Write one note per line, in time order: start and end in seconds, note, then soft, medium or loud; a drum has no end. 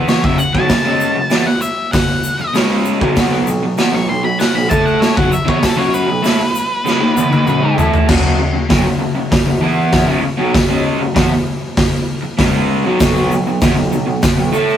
0.00 0.23 E3 medium
0.00 0.24 B3 medium
0.00 0.24 E4 loud
0.08 0.23 C#5 medium
0.08 snare loud
0.08 open hi-hat medium
0.08 shaker medium
0.24 0.38 F#2 medium
0.24 0.39 C#3 loud
0.24 0.38 E5 medium
0.24 kick loud
0.38 0.54 F#5 medium
0.38 muted overdriven electric guitar stroke medium
0.38 shaker medium
0.53 0.69 B2 loud
0.53 0.70 F#3 loud
0.53 1.44 A5 loud
0.53 kick loud
0.69 muted overdriven electric guitar stroke medium
0.69 kick loud
0.69 snare loud
0.69 open hi-hat medium
0.69 shaker medium
0.85 1.15 C#3 medium
0.85 1.15 G#3 medium
0.85 1.16 C#4 loud
1.00 shaker loud
1.15 1.31 F#2 medium
1.15 1.30 C#3 medium
1.30 1.46 E3 medium
1.30 1.46 B3 loud
1.30 snare loud
1.30 open hi-hat medium
1.30 shaker medium
1.47 1.61 F#5 medium
1.61 1.92 E5 medium
1.61 shaker loud
1.92 2.53 F#5 loud
1.92 kick loud
1.92 snare loud
1.92 open hi-hat medium
1.92 shaker medium
2.24 shaker medium
2.39 muted overdriven electric guitar stroke medium
2.39 shaker soft
2.54 2.99 C#3 medium
2.54 3.00 G#3 loud
2.54 3.01 C#4 loud
2.54 snare loud
2.54 open hi-hat medium
2.54 shaker medium
2.85 shaker medium
3.00 3.15 B2 medium
3.00 3.16 F#3 medium
3.00 kick loud
3.16 3.46 B2 loud
3.16 3.47 F#3 loud
3.16 3.47 B3 loud
3.16 kick loud
3.16 snare loud
3.16 open hi-hat medium
3.16 shaker medium
3.47 3.62 B2 medium
3.47 3.62 F#3 medium
3.47 shaker medium
3.63 3.77 B2 medium
3.63 3.78 F#3 medium
3.78 3.93 E3 loud
3.78 3.93 B3 medium
3.78 snare loud
3.78 open hi-hat medium
3.78 shaker medium
3.94 4.07 B2 medium
3.94 4.07 F#3 medium
3.94 4.09 C#6 medium
4.09 4.23 B2 medium
4.09 4.23 F#3 medium
4.09 4.24 C6 loud
4.24 4.38 B2 medium
4.24 4.40 F#3 medium
4.24 4.39 B5 loud
4.39 4.54 F#5 loud
4.39 muted overdriven electric guitar stroke medium
4.39 snare loud
4.39 open hi-hat medium
4.39 shaker medium
4.55 4.70 B2 medium
4.55 4.68 F#3 medium
4.55 4.69 B5 loud
4.69 5.15 A3 loud
4.69 5.16 E4 loud
4.69 5.16 A4 loud
4.69 4.85 A5 medium
4.69 kick loud
4.69 shaker loud
4.85 5.01 F#5 loud
4.85 shaker soft
5.00 5.16 C#5 loud
5.00 snare loud
5.00 open hi-hat soft
5.00 shaker medium
5.16 5.30 B2 loud
5.16 5.31 F#3 loud
5.16 5.32 F#5 medium
5.16 kick loud
5.31 5.48 E5 medium
5.31 muted overdriven electric guitar stroke medium
5.31 shaker medium
5.45 5.60 E3 medium
5.45 5.61 B3 loud
5.45 kick loud
5.49 5.63 C#5 loud
5.60 5.78 A4 medium
5.60 muted overdriven electric guitar stroke medium
5.60 kick loud
5.60 snare loud
5.60 open hi-hat medium
5.60 shaker medium
5.77 6.07 F#3 medium
5.77 6.07 C#4 loud
5.77 6.08 F#4 medium
5.77 5.94 C#5 loud
5.94 7.75 B4 loud
5.94 shaker loud
6.07 6.24 B2 medium
6.07 6.22 F#3 medium
6.22 6.38 A3 loud
6.22 6.39 E4 loud
6.22 snare loud
6.22 open hi-hat medium
6.22 shaker medium
6.55 shaker loud
6.85 7.00 C#3 loud
6.85 7.00 G#3 loud
6.85 snare medium
6.85 shaker medium
7.00 7.15 D#3 loud
7.00 7.16 A#3 loud
7.16 7.31 E3 medium
7.16 7.31 B3 loud
7.16 high tom medium
7.16 shaker loud
7.31 7.46 D#3 medium
7.31 7.47 A#3 loud
7.31 high tom medium
7.31 shaker soft
7.46 7.62 F#3 medium
7.46 7.60 C#4 loud
7.46 mid tom medium
7.46 shaker medium
7.61 7.76 G#3 loud
7.61 7.77 D#4 loud
7.77 8.07 A3 loud
7.77 8.08 E4 loud
7.77 8.09 A4 loud
7.77 floor tom loud
7.77 shaker medium
7.93 floor tom medium
7.93 shaker soft
8.07 8.37 F#2 loud
8.07 8.38 C#3 loud
8.07 8.39 F#3 loud
8.07 kick loud
8.07 snare loud
8.07 crash loud
8.38 8.52 F#2 medium
8.38 8.52 C#3 medium
8.53 8.70 F#2 medium
8.53 8.68 C#3 medium
8.69 8.84 B2 medium
8.69 8.85 F#3 loud
8.69 kick loud
8.69 snare loud
8.69 open hi-hat medium
8.84 8.98 F#2 medium
8.84 8.98 C#3 medium
8.99 9.14 F#2 medium
8.99 9.15 C#3 medium
9.15 9.30 F#2 medium
9.15 9.32 C#3 medium
9.31 muted overdriven electric guitar stroke medium
9.31 kick loud
9.31 snare loud
9.31 open hi-hat medium
9.46 9.62 F#2 medium
9.46 9.61 C#3 medium
9.61 10.07 E3 loud
9.61 10.08 B3 medium
9.61 10.08 E4 loud
9.92 kick loud
9.92 snare loud
9.92 open hi-hat medium
10.07 10.22 F#2 medium
10.07 10.23 C#3 loud
10.23 muted overdriven electric guitar stroke medium
10.38 10.53 B2 loud
10.38 10.54 F#3 loud
10.54 muted overdriven electric guitar stroke medium
10.54 kick loud
10.54 snare loud
10.54 open hi-hat medium
10.69 10.99 C#3 medium
10.69 11.00 G#3 loud
10.69 11.00 C#4 loud
11.00 11.16 F#2 medium
11.00 11.14 C#3 medium
11.15 11.30 E3 medium
11.15 11.30 B3 loud
11.15 kick loud
11.15 snare loud
11.15 open hi-hat medium
11.77 kick loud
11.77 snare loud
11.77 open hi-hat medium
12.23 muted overdriven electric guitar stroke medium
12.38 12.84 C#3 medium
12.38 12.84 G#3 loud
12.38 12.84 C#4 loud
12.38 kick loud
12.38 snare loud
12.38 open hi-hat medium
12.84 12.98 B2 medium
12.84 13.00 F#3 loud
13.00 13.30 B2 loud
13.00 13.30 F#3 loud
13.00 13.31 B3 loud
13.00 kick loud
13.00 snare loud
13.00 open hi-hat medium
13.00 shaker medium
13.16 shaker soft
13.32 13.45 B2 medium
13.32 13.46 F#3 medium
13.32 shaker medium
13.46 13.61 B2 medium
13.46 13.62 F#3 medium
13.46 shaker soft
13.62 13.76 E3 loud
13.62 13.76 B3 loud
13.62 kick loud
13.62 snare loud
13.62 open hi-hat medium
13.62 shaker loud
13.76 13.91 B2 medium
13.76 13.92 F#3 medium
13.92 14.05 B2 medium
13.92 14.06 F#3 medium
13.92 shaker medium
14.07 14.23 B2 medium
14.07 14.23 F#3 medium
14.23 muted overdriven electric guitar stroke medium
14.23 kick loud
14.23 snare loud
14.23 open hi-hat medium
14.23 shaker loud
14.38 14.53 B2 medium
14.38 14.52 F#3 medium
14.53 14.77 A3 loud
14.53 14.77 E4 loud
14.53 14.77 A4 loud
14.53 shaker medium
14.69 shaker soft